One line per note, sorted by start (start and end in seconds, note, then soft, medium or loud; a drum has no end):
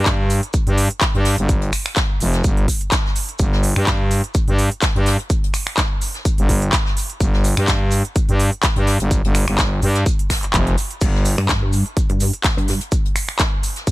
0.00 0.41 G2 loud
0.06 kick loud
0.06 snare loud
0.06 clap loud
0.06 closed hi-hat medium
0.06 shaker medium
0.30 open hi-hat loud
0.30 shaker medium
0.43 closed hi-hat medium
0.53 kick loud
0.53 closed hi-hat medium
0.53 shaker loud
0.67 0.88 G2 loud
0.67 closed hi-hat medium
0.78 open hi-hat loud
0.78 shaker medium
0.91 closed hi-hat soft
1.01 kick loud
1.01 snare loud
1.01 clap loud
1.01 closed hi-hat medium
1.01 shaker medium
1.14 1.36 G2 loud
1.14 closed hi-hat soft
1.24 snare soft
1.24 open hi-hat loud
1.24 shaker medium
1.38 1.71 G1 loud
1.38 closed hi-hat soft
1.38 closed hi-hat medium
1.49 kick loud
1.49 closed hi-hat medium
1.49 shaker medium
1.62 closed hi-hat soft
1.73 finger snap medium
1.73 open hi-hat loud
1.73 shaker medium
1.86 finger snap medium
1.96 kick loud
1.96 snare loud
1.96 clap loud
1.96 closed hi-hat medium
1.96 shaker medium
2.20 2.43 F1 loud
2.20 open hi-hat loud
2.20 shaker medium
2.33 snare medium
2.33 closed hi-hat medium
2.44 2.66 G1 medium
2.44 kick loud
2.44 closed hi-hat medium
2.44 shaker medium
2.57 closed hi-hat medium
2.68 kick medium
2.68 open hi-hat loud
2.68 shaker medium
2.81 closed hi-hat medium
2.92 kick loud
2.92 snare loud
2.92 clap loud
2.92 closed hi-hat medium
2.92 shaker medium
3.06 snare soft
3.16 open hi-hat loud
3.16 shaker medium
3.29 closed hi-hat medium
3.39 3.74 G1 medium
3.39 kick loud
3.39 closed hi-hat medium
3.39 shaker medium
3.53 snare soft
3.63 open hi-hat loud
3.63 shaker medium
3.76 4.22 G2 loud
3.76 finger snap medium
3.87 kick loud
3.87 snare loud
3.87 clap loud
3.87 closed hi-hat medium
3.87 shaker medium
4.11 open hi-hat medium
4.11 shaker medium
4.24 closed hi-hat medium
4.34 kick loud
4.34 closed hi-hat medium
4.34 shaker loud
4.48 4.69 G2 loud
4.48 closed hi-hat medium
4.58 open hi-hat loud
4.58 shaker medium
4.71 closed hi-hat medium
4.82 kick loud
4.82 snare loud
4.82 clap loud
4.82 closed hi-hat medium
4.82 shaker loud
4.95 5.17 G2 loud
4.95 closed hi-hat soft
5.06 snare soft
5.06 open hi-hat medium
5.06 shaker medium
5.19 closed hi-hat medium
5.19 closed hi-hat soft
5.30 kick loud
5.30 closed hi-hat medium
5.30 shaker medium
5.44 closed hi-hat soft
5.54 finger snap medium
5.54 open hi-hat loud
5.54 shaker medium
5.67 finger snap medium
5.77 kick loud
5.77 snare loud
5.77 clap loud
5.77 closed hi-hat medium
5.77 shaker medium
6.01 open hi-hat medium
6.01 shaker medium
6.14 snare soft
6.14 closed hi-hat medium
6.25 kick loud
6.25 closed hi-hat medium
6.25 shaker medium
6.38 6.71 G1 loud
6.38 closed hi-hat medium
6.49 kick medium
6.49 open hi-hat loud
6.49 shaker medium
6.62 closed hi-hat medium
6.72 kick loud
6.72 snare loud
6.72 clap loud
6.72 closed hi-hat medium
6.72 shaker medium
6.86 snare soft
6.97 open hi-hat medium
6.97 shaker medium
7.10 closed hi-hat medium
7.20 7.55 G1 medium
7.20 kick loud
7.20 closed hi-hat medium
7.20 shaker loud
7.33 snare soft
7.44 open hi-hat loud
7.44 shaker medium
7.57 8.03 G2 medium
7.57 finger snap medium
7.68 kick loud
7.68 snare loud
7.68 clap loud
7.68 closed hi-hat medium
7.68 shaker medium
7.91 open hi-hat medium
7.91 shaker medium
8.05 closed hi-hat medium
8.16 kick loud
8.16 closed hi-hat medium
8.16 shaker medium
8.29 8.50 G2 loud
8.29 closed hi-hat medium
8.39 open hi-hat loud
8.39 shaker medium
8.53 closed hi-hat medium
8.63 kick loud
8.63 snare loud
8.63 clap loud
8.63 closed hi-hat medium
8.63 shaker medium
8.76 8.98 G2 loud
8.76 closed hi-hat soft
8.86 snare soft
8.86 open hi-hat medium
8.86 shaker medium
9.00 9.22 G1 loud
9.00 closed hi-hat soft
9.00 closed hi-hat medium
9.11 kick loud
9.11 closed hi-hat medium
9.11 shaker medium
9.24 9.46 G1 medium
9.24 closed hi-hat soft
9.35 finger snap medium
9.35 open hi-hat loud
9.35 shaker medium
9.48 9.81 G1 medium
9.48 finger snap medium
9.58 kick loud
9.58 snare loud
9.58 clap loud
9.58 closed hi-hat medium
9.58 shaker medium
9.82 10.04 G2 loud
9.82 open hi-hat medium
9.82 shaker medium
9.95 snare medium
9.95 closed hi-hat medium
10.06 kick loud
10.06 closed hi-hat medium
10.06 shaker loud
10.19 closed hi-hat medium
10.30 finger snap medium
10.30 kick medium
10.30 snare medium
10.30 open hi-hat loud
10.30 shaker medium
10.43 clap soft
10.43 closed hi-hat medium
10.54 10.76 F1 loud
10.54 kick loud
10.54 clap loud
10.54 closed hi-hat medium
10.54 shaker medium
10.67 closed hi-hat soft
10.78 open hi-hat medium
10.78 shaker medium
10.91 closed hi-hat medium
11.01 11.36 G1 medium
11.01 kick loud
11.01 closed hi-hat medium
11.01 crash medium
11.01 shaker medium
11.15 snare soft
11.25 open hi-hat loud
11.25 shaker medium
11.38 11.84 G2 loud
11.38 finger snap medium
11.49 kick loud
11.49 snare loud
11.49 clap loud
11.49 closed hi-hat medium
11.49 shaker medium
11.73 open hi-hat medium
11.73 shaker medium
11.86 closed hi-hat medium
11.97 kick loud
11.97 closed hi-hat medium
11.97 shaker medium
12.10 12.31 G2 medium
12.10 closed hi-hat medium
12.20 open hi-hat loud
12.20 shaker medium
12.33 closed hi-hat medium
12.44 kick loud
12.44 snare loud
12.44 clap loud
12.44 closed hi-hat medium
12.44 shaker medium
12.57 12.79 G2 loud
12.57 closed hi-hat soft
12.68 snare soft
12.68 open hi-hat loud
12.68 shaker medium
12.81 closed hi-hat soft
12.81 closed hi-hat medium
12.92 kick loud
12.92 closed hi-hat medium
12.92 shaker medium
13.05 closed hi-hat soft
13.16 finger snap medium
13.16 open hi-hat loud
13.16 shaker medium
13.29 finger snap medium
13.39 kick loud
13.39 snare loud
13.39 clap loud
13.39 closed hi-hat medium
13.39 shaker loud
13.63 open hi-hat medium
13.63 shaker medium
13.76 snare soft
13.76 closed hi-hat medium
13.87 kick loud
13.87 closed hi-hat medium
13.87 shaker medium